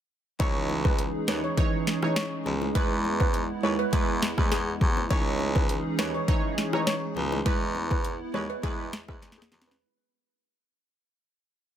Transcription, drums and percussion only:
0.40 kick loud
0.40 closed hi-hat medium
0.40 high bongo medium
0.69 high bongo medium
0.85 kick medium
0.85 high bongo medium
0.99 closed hi-hat medium
1.28 snare loud
1.57 kick loud
1.57 closed hi-hat medium
1.57 high bongo medium
1.87 snare medium
2.02 cross-stick medium
2.02 high bongo medium
2.16 snare loud
2.16 closed hi-hat medium
2.46 low bongo medium
2.62 high bongo medium
2.75 kick loud
2.75 closed hi-hat medium
2.75 high bongo medium
3.05 high bongo medium
3.20 kick loud
3.20 high bongo medium
3.34 closed hi-hat medium
3.93 kick loud
3.93 closed hi-hat medium
3.93 high bongo medium
4.22 snare loud
4.38 kick medium
4.38 cross-stick loud
4.38 high bongo medium
4.52 snare medium
4.52 closed hi-hat medium
4.81 kick medium
4.81 low bongo medium
4.97 high bongo medium
5.11 kick loud
5.11 closed hi-hat medium
5.11 high bongo medium
5.40 high bongo medium
5.55 kick loud
5.55 high bongo medium
5.69 closed hi-hat medium
5.99 snare loud
6.28 kick loud
6.28 closed hi-hat medium
6.28 high bongo medium
6.58 snare medium
6.73 cross-stick loud
6.73 high bongo medium
6.87 snare loud
6.87 closed hi-hat medium
7.17 low bongo medium
7.32 high bongo medium
7.46 kick loud
7.46 closed hi-hat medium
7.46 high bongo medium
7.75 high bongo medium
7.91 kick medium
7.91 high bongo medium
8.04 closed hi-hat medium
8.34 low bongo medium
8.63 kick medium
8.63 closed hi-hat medium
8.63 high bongo medium
8.93 snare loud
9.08 kick loud
9.08 cross-stick loud
9.08 high bongo medium
9.22 snare medium
9.22 closed hi-hat medium
9.32 snare medium
9.42 snare medium
9.52 snare medium
9.52 low bongo medium
9.62 snare loud
9.68 snare loud
9.68 high bongo medium

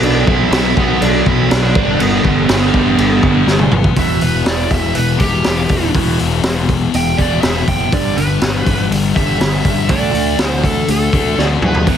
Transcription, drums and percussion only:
0.03 crash medium
0.27 kick loud
0.52 snare loud
0.52 crash medium
0.77 kick medium
1.02 crash medium
1.26 kick medium
1.51 snare loud
1.51 crash medium
1.75 kick loud
2.00 crash medium
2.25 kick medium
2.49 snare loud
2.49 crash medium
2.74 kick medium
2.98 crash medium
3.23 kick medium
3.47 snare medium
3.59 mid tom medium
3.72 mid tom loud
3.84 kick loud
3.96 kick loud
3.96 open hi-hat medium
4.21 open hi-hat medium
4.46 snare loud
4.46 open hi-hat medium
4.71 kick medium
4.71 open hi-hat medium
4.95 open hi-hat medium
5.20 kick medium
5.20 open hi-hat medium
5.44 snare loud
5.44 open hi-hat medium
5.69 kick medium
5.69 open hi-hat medium
5.94 kick loud
5.94 open hi-hat medium
6.19 open hi-hat medium
6.43 snare loud
6.43 open hi-hat medium
6.69 kick medium
6.69 open hi-hat medium
6.94 open hi-hat medium
7.18 kick medium
7.18 open hi-hat medium
7.43 snare loud
7.43 open hi-hat medium
7.68 kick medium
7.68 open hi-hat medium
7.93 kick loud
7.93 open hi-hat medium
8.17 open hi-hat medium
8.41 snare loud
8.41 open hi-hat medium
8.66 kick medium
8.66 open hi-hat medium
8.92 open hi-hat medium
9.16 kick medium
9.16 open hi-hat medium
9.41 snare medium
9.41 open hi-hat medium
9.65 kick medium
9.65 open hi-hat medium
9.89 kick loud
9.89 open hi-hat medium
10.15 open hi-hat medium
10.39 snare loud
10.39 open hi-hat medium
10.64 kick medium
10.64 open hi-hat medium
10.88 open hi-hat medium
11.13 kick medium
11.13 open hi-hat medium
11.38 snare medium
11.62 mid tom medium
11.75 floor tom medium
11.87 kick loud
11.87 open hi-hat medium

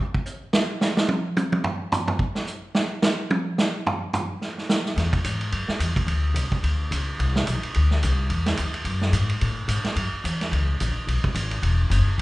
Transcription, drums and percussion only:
0.14 kick medium
0.26 hi-hat pedal medium
0.53 snare loud
0.81 snare loud
0.81 hi-hat pedal medium
0.97 snare loud
1.09 high tom loud
1.37 hi-hat pedal medium
1.37 high tom loud
1.52 high tom loud
1.64 floor tom loud
1.92 floor tom loud
1.92 hi-hat pedal medium
2.08 floor tom loud
2.19 kick medium
2.35 snare medium
2.47 hi-hat pedal medium
2.75 snare loud
3.02 snare loud
3.02 hi-hat pedal medium
3.31 high tom loud
3.58 snare loud
3.58 hi-hat pedal medium
3.87 floor tom loud
4.13 floor tom loud
4.13 hi-hat pedal medium
4.42 snare soft
4.58 snare soft
4.69 snare loud
4.69 hi-hat pedal medium
4.86 snare soft
4.97 snare soft
4.97 ride medium
5.13 kick medium
5.13 ride medium
5.24 hi-hat pedal medium
5.24 ride medium
5.41 ride medium
5.52 ride medium
5.68 snare medium
5.80 hi-hat pedal medium
5.80 ride medium
5.96 kick medium
5.96 ride medium
6.08 ride medium
6.36 hi-hat pedal medium
6.36 ride medium
6.52 kick medium
6.64 ride medium
6.92 hi-hat pedal medium
6.92 ride medium
7.20 ride medium
7.36 snare medium
7.47 hi-hat pedal medium
7.47 ride medium
7.63 ride medium
7.74 ride medium
7.91 snare soft
8.03 hi-hat pedal medium
8.03 ride medium
8.30 ride medium
8.46 snare medium
8.46 ride medium
8.57 hi-hat pedal medium
8.57 ride medium
8.74 ride medium
8.85 ride medium
9.01 snare medium
9.13 hi-hat pedal medium
9.13 ride medium
9.29 ride medium
9.41 ride medium
9.68 hi-hat pedal medium
9.68 ride medium
9.84 snare medium
9.84 ride medium
9.96 ride medium
10.25 hi-hat pedal medium
10.25 ride medium
10.41 snare soft
10.41 ride medium
10.53 ride medium
10.80 hi-hat pedal medium
10.80 ride medium
11.08 ride medium
11.24 kick medium
11.35 hi-hat pedal medium
11.35 ride medium
11.51 ride medium
11.63 ride medium
11.91 hi-hat pedal medium
11.91 ride medium

